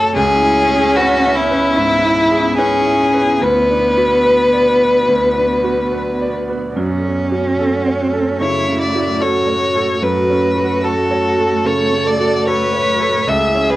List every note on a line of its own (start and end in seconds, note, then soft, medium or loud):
0.00 0.17 C#3 medium
0.00 0.12 A3 medium
0.00 0.18 C#4 soft
0.00 0.12 F#4 medium
0.00 0.18 F#4 medium
0.00 0.15 A4 medium
0.00 0.18 A4 medium
0.00 0.12 C#5 medium
0.00 0.18 C#5 medium
0.14 1.73 C#2 medium
0.14 3.40 B3 medium
0.14 1.78 C#4 loud
0.14 0.28 C#4 medium
0.14 3.42 E4 medium
0.14 0.98 G#4 medium
0.14 3.38 C#5 medium
0.35 0.48 E4 medium
0.43 0.86 E4 soft
0.69 1.12 G#4 medium
0.76 0.88 C#4 medium
0.96 1.37 F#4 medium
0.96 1.09 B4 medium
0.96 1.40 B4 medium
1.17 1.29 B4 medium
1.24 1.67 E5 medium
1.36 1.49 C#4 medium
1.36 2.57 E4 medium
1.51 1.94 B4 medium
1.58 1.70 E4 medium
1.77 2.21 G#2 medium
1.77 1.90 C#4 medium
1.77 2.60 E4 loud
1.98 2.10 G#4 medium
2.05 2.48 E4 medium
2.31 2.75 G#4 soft
2.38 2.50 C#4 medium
2.58 3.42 C#4 medium
2.58 2.71 E4 medium
2.58 3.43 G#4 medium
2.58 3.03 B4 medium
2.80 2.92 E4 medium
2.86 3.30 E5 medium
3.01 3.13 C#4 medium
3.14 3.42 B4 soft
3.22 3.34 E4 medium
3.41 5.05 D2 medium
3.41 6.72 B3 medium
3.41 5.90 B3 medium
3.41 6.75 F#4 medium
3.41 6.35 B4 medium
3.41 3.55 B4 medium
3.41 6.76 D5 medium
3.63 3.76 D5 medium
3.71 4.15 D4 soft
3.97 4.42 F#4 soft
4.05 4.18 B4 medium
4.25 4.70 B4 soft
4.25 4.39 B5 soft
4.48 4.60 B5 soft
4.53 4.98 D5 soft
4.68 4.80 B4 medium
4.80 5.25 B4 soft
5.08 6.72 D2 soft
5.08 5.22 B4 medium
5.31 5.44 F#5 soft
5.37 5.82 D4 soft
5.64 6.09 F#4 soft
5.73 5.86 B4 medium
5.93 6.38 B4 soft
5.93 6.07 D5 soft
6.15 6.27 D5 soft
6.21 6.66 D5 soft
6.36 6.48 B4 medium
6.49 6.77 B4 soft
6.56 6.69 D5 soft
6.76 8.37 F#2 medium
6.76 10.03 A3 medium
6.76 8.43 C#4 medium
6.76 9.99 F#4 medium
6.76 6.89 F#4 medium
6.76 10.03 A4 medium
6.98 7.10 A4 soft
7.04 7.48 C#4 soft
7.32 7.75 F#4 soft
7.40 7.52 F#4 medium
7.59 8.03 A4 soft
7.59 7.73 F#5 soft
7.81 7.93 F#5 soft
7.86 8.30 C#5 soft
8.01 8.13 F#4 medium
8.13 8.57 A4 soft
8.41 8.66 C#3 soft
8.41 9.24 E4 medium
8.41 8.54 F#4 medium
8.41 8.79 C#5 medium
8.67 9.11 C#3 soft
8.81 9.23 D5 soft
8.95 9.38 F#4 soft
9.03 9.15 F#4 medium
9.20 10.03 F#4 medium
9.20 9.65 A4 soft
9.20 9.35 A4 soft
9.20 10.05 C#5 medium
9.44 9.56 A4 soft
9.44 9.91 C#5 soft
9.64 9.76 F#4 medium
9.75 10.19 A4 soft
9.84 9.96 A4 soft
10.02 11.61 F#2 soft
10.02 13.25 A3 medium
10.02 10.15 F#4 medium
10.02 11.67 F#4 medium
10.02 13.25 F#4 medium
10.02 13.25 A4 medium
10.02 10.86 B4 soft
10.24 10.36 A4 soft
10.30 10.73 C#4 soft
10.57 11.00 F#4 soft
10.65 10.77 F#4 medium
10.83 11.27 A4 soft
10.83 11.68 A4 soft
10.83 10.97 F#5 soft
11.05 11.17 F#5 soft
11.11 11.55 C#5 soft
11.25 11.38 F#4 medium
11.38 11.82 A4 soft
11.64 11.90 C#3 soft
11.64 11.78 F#4 medium
11.64 12.49 A4 medium
11.64 12.08 C#5 medium
11.86 11.98 C#5 soft
11.92 12.36 C#3 soft
12.07 12.47 D5 medium
12.20 12.63 F#4 soft
12.27 12.39 F#4 medium
12.47 12.90 A4 soft
12.47 12.59 A4 soft
12.47 13.29 B4 medium
12.47 13.30 C#5 medium
12.67 12.79 A4 soft
12.73 13.17 C#5 soft
12.87 12.99 F#4 medium
13.00 13.28 A4 soft
13.08 13.20 A4 soft
13.27 13.76 C#2 medium
13.27 13.40 C#4 medium
13.27 13.76 G#4 medium
13.27 13.71 E5 medium
13.48 13.61 E4 soft
13.55 13.76 C#4 soft
13.70 13.76 B4 medium